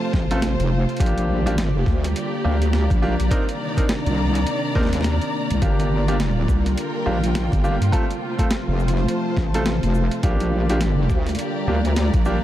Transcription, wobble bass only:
0.14 0.57 A1 loud
0.60 0.86 F1 loud
1.00 1.85 A#1 loud
1.86 2.14 D2 loud
2.45 2.88 D2 loud
2.90 3.17 A#1 loud
3.20 3.29 A#1 loud
4.06 4.45 C2 loud
4.76 5.19 D#2 medium
5.51 5.60 C2 loud
5.62 6.47 G1 loud
6.48 6.75 C2 loud
7.06 7.50 A#1 medium
7.52 7.78 G1 loud
7.81 7.91 G2 loud
8.68 9.06 F1 medium
9.37 9.80 A1 medium
9.83 10.09 F1 loud
10.23 11.08 A#1 loud
11.10 11.37 D2 loud
11.67 12.11 D2 loud
12.13 12.40 A#1 loud

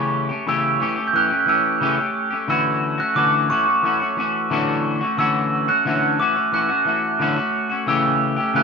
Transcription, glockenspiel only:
0.00 0.49 C#6 medium
0.49 1.10 E6 medium
1.07 1.14 G6 medium
1.16 1.50 F#6 loud
1.49 2.12 E6 medium
2.50 3.01 E6 medium
3.00 3.17 F#6 medium
3.16 3.47 D6 medium
3.50 4.80 C#6 medium
5.19 5.65 E6 medium
5.69 6.16 F#6 medium
6.20 6.51 D6 medium
6.54 7.50 F#6 medium
7.88 8.57 E6 medium
8.56 8.63 F#6 medium

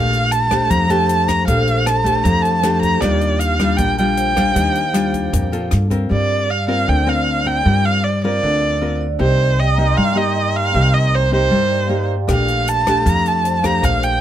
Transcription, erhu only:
0.00 0.33 F5 medium
0.32 0.71 A5 loud
0.70 0.92 A#5 medium
0.90 1.30 A5 medium
1.28 1.47 A#5 medium
1.47 1.88 F5 medium
1.86 2.25 A5 medium
2.24 2.44 A#5 medium
2.42 2.81 A5 medium
2.82 3.02 A#5 medium
3.01 3.41 D5 medium
3.40 3.78 F5 medium
3.77 3.97 G5 medium
3.99 5.68 G5 medium
6.12 6.52 D5 medium
6.51 6.69 F5 medium
6.69 6.91 F5 medium
6.89 7.11 G5 medium
7.09 7.49 F5 medium
7.47 7.87 G5 medium
7.85 8.05 F5 medium
8.04 8.23 D5 medium
8.24 8.97 D5 medium
9.21 9.61 C5 medium
9.60 9.99 D#5 medium
9.97 10.19 F5 medium
10.18 10.58 D#5 medium
10.56 10.95 F5 medium
10.94 11.16 D#5 medium
11.15 11.33 C5 medium
11.33 12.06 C5 loud
12.32 12.71 F5 medium
12.69 13.11 A5 loud
13.09 13.30 A#5 medium
13.28 13.67 A5 medium
13.66 13.86 A#5 medium
13.85 14.06 F5 medium
14.04 14.21 G5 medium

